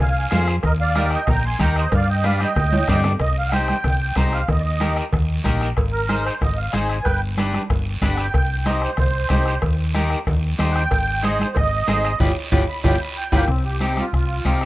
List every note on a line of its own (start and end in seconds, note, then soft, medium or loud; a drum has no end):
0.00 0.25 C2 medium
0.00 0.46 F5 medium
0.00 0.45 G#5 medium
0.00 low conga medium
0.00 long guiro medium
0.31 0.58 F2 medium
0.31 0.54 F4 medium
0.31 0.55 G#4 medium
0.31 0.55 C5 medium
0.31 bombo rim medium
0.31 cowbell medium
0.31 high conga medium
0.31 low timbale medium
0.31 short guiro medium
0.48 bombo rim medium
0.48 short guiro medium
0.63 1.15 D#2 medium
0.63 0.73 A#4 medium
0.63 0.71 D#5 medium
0.63 bombo low medium
0.63 bombo rim medium
0.63 cowbell loud
0.63 long guiro medium
0.80 1.11 D5 medium
0.80 1.10 F5 loud
0.95 1.19 D#4 medium
0.95 1.19 G4 medium
0.95 1.19 A#4 medium
0.95 bombo rim medium
0.95 cowbell medium
0.95 high conga medium
0.95 short guiro medium
1.11 1.28 D#5 medium
1.11 1.27 G5 medium
1.11 bombo rim medium
1.11 short guiro medium
1.27 1.54 A#1 medium
1.27 1.45 G5 medium
1.27 1.44 A#5 medium
1.27 bombo low medium
1.27 bombo rim medium
1.27 cowbell medium
1.27 low conga medium
1.27 long guiro medium
1.45 1.61 G#5 medium
1.45 1.61 C6 medium
1.59 1.86 D#2 medium
1.59 1.83 D#4 medium
1.59 1.83 G4 medium
1.59 1.83 A#4 medium
1.59 1.76 G5 medium
1.59 1.75 A#5 medium
1.59 bombo low medium
1.59 bombo rim medium
1.59 cowbell medium
1.59 high conga medium
1.59 short guiro medium
1.76 1.93 C5 medium
1.76 1.94 D#5 medium
1.76 bombo rim medium
1.76 short guiro medium
1.92 2.44 G2 medium
1.92 2.09 D5 medium
1.92 2.08 F5 medium
1.92 bombo low medium
1.92 bombo rim medium
1.92 cowbell loud
1.92 low conga medium
1.92 long guiro medium
2.10 2.25 D#5 medium
2.10 2.24 G5 medium
2.24 2.47 D4 medium
2.24 2.47 G4 medium
2.24 2.47 B4 medium
2.24 2.40 D5 medium
2.24 2.39 F5 medium
2.24 bombo rim medium
2.24 cowbell medium
2.24 high conga medium
2.24 short guiro medium
2.40 3.01 D#5 medium
2.40 3.00 G5 medium
2.40 bombo rim medium
2.40 high conga medium
2.40 short guiro medium
2.56 2.82 D2 medium
2.56 bombo low medium
2.56 bombo rim medium
2.56 cowbell medium
2.56 low conga medium
2.56 long guiro medium
2.72 high conga medium
2.72 high timbale loud
2.88 3.14 G2 medium
2.88 3.12 D4 medium
2.88 3.12 G4 medium
2.88 3.12 D5 loud
2.88 bombo low medium
2.88 bombo rim medium
2.88 cowbell medium
2.88 low timbale medium
2.88 short guiro medium
2.94 low conga medium
3.04 bombo rim medium
3.04 low conga medium
3.04 low timbale medium
3.04 short guiro medium
3.20 3.72 C2 medium
3.20 3.36 D#5 medium
3.20 bombo low medium
3.20 bombo rim medium
3.20 cowbell medium
3.20 long guiro medium
3.38 3.53 F5 medium
3.49 3.75 D#4 medium
3.49 3.51 F#5 medium
3.49 bombo rim medium
3.49 cowbell medium
3.53 3.75 G4 medium
3.53 3.76 C5 medium
3.53 4.15 G5 loud
3.53 high conga medium
3.53 short guiro medium
3.68 bombo rim medium
3.68 high conga medium
3.68 short guiro medium
3.84 4.10 C2 medium
3.84 bombo low medium
3.84 bombo rim medium
3.84 cowbell medium
3.84 low conga medium
3.84 long guiro medium
4.16 4.42 C2 medium
4.16 4.40 D#4 medium
4.16 4.40 G4 medium
4.16 4.40 C5 medium
4.16 4.33 A#5 medium
4.16 bombo low medium
4.16 bombo rim medium
4.16 cowbell medium
4.16 high conga medium
4.16 low timbale medium
4.16 short guiro medium
4.33 4.49 F5 medium
4.33 bombo rim medium
4.33 short guiro medium
4.48 5.00 D#2 loud
4.48 4.62 D#5 medium
4.48 bombo low medium
4.48 bombo rim medium
4.48 cowbell loud
4.48 low conga medium
4.48 long guiro medium
4.60 4.62 D5 medium
4.64 4.96 D#5 medium
4.80 5.03 D#4 medium
4.80 5.04 G4 medium
4.80 5.04 A#4 medium
4.80 bombo rim medium
4.80 cowbell medium
4.80 high conga medium
4.80 short guiro medium
4.97 bombo rim medium
4.97 short guiro medium
5.13 5.39 D#2 medium
5.13 bombo low medium
5.13 bombo rim medium
5.13 cowbell medium
5.13 low conga medium
5.13 long guiro medium
5.44 5.71 A#1 medium
5.44 5.67 D#4 medium
5.44 5.68 G4 medium
5.44 5.68 A#4 medium
5.44 bombo low medium
5.44 bombo rim medium
5.44 cowbell medium
5.44 high conga medium
5.44 low conga medium
5.44 short guiro medium
5.61 bombo rim medium
5.61 short guiro medium
5.77 6.29 G#1 loud
5.77 bombo low medium
5.77 bombo rim medium
5.77 cowbell loud
5.77 long guiro medium
5.92 6.24 A#4 loud
6.09 6.32 D#4 medium
6.09 6.32 G#4 medium
6.09 6.32 C5 medium
6.09 bombo rim medium
6.09 cowbell medium
6.09 high conga medium
6.09 short guiro medium
6.25 6.41 C5 medium
6.25 bombo rim medium
6.25 short guiro medium
6.41 6.67 G#1 medium
6.41 6.58 D#5 medium
6.41 bombo low medium
6.41 bombo rim medium
6.41 cowbell medium
6.41 low conga medium
6.41 long guiro medium
6.57 6.73 F5 medium
6.73 7.00 G#1 medium
6.73 6.96 D#4 medium
6.73 6.96 G#4 medium
6.73 6.96 C5 medium
6.73 7.05 G#5 medium
6.73 bombo rim medium
6.73 cowbell medium
6.73 high conga medium
6.73 short guiro medium
6.89 bombo rim medium
6.89 short guiro medium
7.04 7.57 G1 medium
7.04 7.20 B4 medium
7.04 7.21 G5 loud
7.04 bombo low medium
7.04 bombo rim medium
7.04 cowbell loud
7.04 long guiro medium
7.37 7.61 D4 medium
7.37 7.61 G4 medium
7.37 7.61 B4 medium
7.37 bombo rim medium
7.37 cowbell medium
7.37 high conga medium
7.37 short guiro medium
7.53 bombo rim medium
7.53 high conga medium
7.53 short guiro medium
7.70 7.96 G1 medium
7.70 bombo low medium
7.70 bombo rim medium
7.70 cowbell medium
7.70 low conga medium
7.70 long guiro medium
8.02 8.28 G1 medium
8.02 8.25 D4 medium
8.02 8.25 G4 medium
8.02 8.25 B4 medium
8.02 bombo low medium
8.02 bombo rim medium
8.02 cowbell medium
8.02 high conga medium
8.02 low conga medium
8.02 low timbale medium
8.02 short guiro medium
8.14 8.17 F#5 medium
8.14 bombo rim medium
8.14 short guiro medium
8.19 8.66 G5 loud
8.34 8.86 C2 loud
8.34 bombo low medium
8.34 bombo rim medium
8.34 cowbell loud
8.34 long guiro medium
8.66 8.89 D#4 medium
8.66 8.89 G4 medium
8.66 8.89 C5 medium
8.66 8.82 D#5 medium
8.66 bombo rim medium
8.66 cowbell medium
8.66 high conga medium
8.66 short guiro medium
8.82 8.97 C5 medium
8.82 bombo rim medium
8.82 short guiro medium
8.97 9.24 C2 medium
8.97 9.61 C5 loud
8.97 bombo low medium
8.97 bombo rim medium
8.97 cowbell medium
8.97 low conga medium
8.97 long guiro medium
9.29 9.56 C2 medium
9.29 9.53 D#4 medium
9.29 9.53 G4 medium
9.29 9.53 C5 medium
9.29 bombo low medium
9.29 bombo rim medium
9.29 cowbell medium
9.29 high conga medium
9.29 low timbale medium
9.29 short guiro medium
9.46 bombo rim medium
9.46 short guiro medium
9.62 10.14 D#2 loud
9.62 bombo low medium
9.62 bombo rim medium
9.62 cowbell loud
9.62 long guiro medium
9.94 10.17 D#4 medium
9.94 10.18 G4 medium
9.94 10.18 A#4 medium
9.94 bombo rim medium
9.94 cowbell medium
9.94 high conga medium
9.94 short guiro medium
10.10 bombo rim medium
10.10 short guiro medium
10.27 10.53 D#2 medium
10.27 bombo low medium
10.27 bombo rim medium
10.27 cowbell medium
10.27 low conga medium
10.27 long guiro medium
10.59 10.85 D#2 medium
10.59 10.82 D#4 medium
10.59 10.82 G4 medium
10.59 10.82 C5 medium
10.59 bombo rim medium
10.59 cowbell medium
10.59 high conga medium
10.59 low timbale medium
10.59 short guiro medium
10.72 10.74 F#5 medium
10.72 bombo rim medium
10.76 11.23 G5 loud
10.76 short guiro medium
10.91 11.43 G#1 loud
10.91 bombo low medium
10.91 bombo rim medium
10.91 cowbell loud
10.91 long guiro medium
11.22 11.46 D#4 medium
11.22 11.46 G#4 medium
11.22 11.47 C5 medium
11.22 11.40 D#5 medium
11.22 bombo rim medium
11.22 cowbell medium
11.22 high conga medium
11.22 short guiro medium
11.39 11.56 C5 medium
11.39 bombo rim medium
11.39 high conga medium
11.39 short guiro medium
11.55 11.82 G#1 medium
11.55 12.19 D#5 loud
11.55 bombo low medium
11.55 bombo rim medium
11.55 cowbell medium
11.55 low conga medium
11.55 long guiro medium
11.87 12.14 G#1 medium
11.87 12.10 D#4 medium
11.87 12.11 G#4 medium
11.87 12.11 C5 medium
11.87 bombo rim medium
11.87 cowbell medium
11.87 high conga medium
11.87 low timbale medium
11.87 short guiro medium
12.04 bombo rim medium
12.04 short guiro medium
12.20 12.32 G1 medium
12.20 12.31 F4 loud
12.20 12.31 G4 loud
12.20 12.30 B4 medium
12.20 bombo low loud
12.20 low conga medium
12.20 high timbale loud
12.20 long guiro loud
12.52 12.64 G1 loud
12.52 12.63 F4 loud
12.52 12.63 G4 loud
12.52 12.63 B4 medium
12.52 bombo low loud
12.52 low conga loud
12.52 high timbale loud
12.52 long guiro medium
12.69 12.84 B5 loud
12.84 12.96 G1 medium
12.84 12.95 F4 loud
12.84 12.95 G4 medium
12.84 12.95 B4 medium
12.84 13.01 G5 medium
12.84 bombo low medium
12.84 low conga loud
12.84 high timbale loud
12.84 long guiro loud
13.01 13.16 B5 medium
13.17 13.31 G5 medium
13.32 13.45 G1 loud
13.32 13.50 A#3 medium
13.32 13.43 F4 medium
13.32 13.43 G4 medium
13.32 13.43 B4 loud
13.32 13.48 G5 medium
13.32 bombo low loud
13.32 low conga loud
13.32 high timbale loud
13.32 long guiro loud
13.48 14.00 C2 medium
13.48 13.64 C4 medium
13.48 bombo low medium
13.48 bombo rim medium
13.48 long guiro medium
13.65 13.81 G4 medium
13.80 14.04 C4 medium
13.80 14.04 D#4 medium
13.80 14.04 G4 medium
13.80 13.97 G4 medium
13.80 bombo rim medium
13.80 high conga medium
13.80 short guiro medium
13.97 14.13 F4 medium
13.97 bombo rim medium
13.97 high conga medium
13.97 short guiro medium
14.13 14.39 C2 medium
14.13 14.59 F4 medium
14.13 bombo low medium
14.13 bombo rim medium
14.13 long guiro medium
14.45 14.65 C2 medium
14.45 14.65 C4 medium
14.45 14.65 D#4 medium
14.45 14.65 G4 medium
14.45 bombo low medium
14.45 bombo rim medium
14.45 high conga medium
14.45 short guiro medium
14.61 bombo rim medium